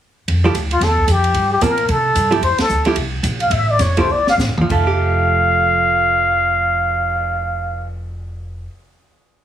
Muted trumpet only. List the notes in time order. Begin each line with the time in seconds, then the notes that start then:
0.72 F4
0.83 A4
1.11 G4
1.52 G4
1.63 A#4
1.91 A4
2.43 C5
2.60 A4
3.42 F5
3.52 E5
3.70 D5
3.81 C#5
3.99 C5
4.11 D5
4.29 F5
4.70 F5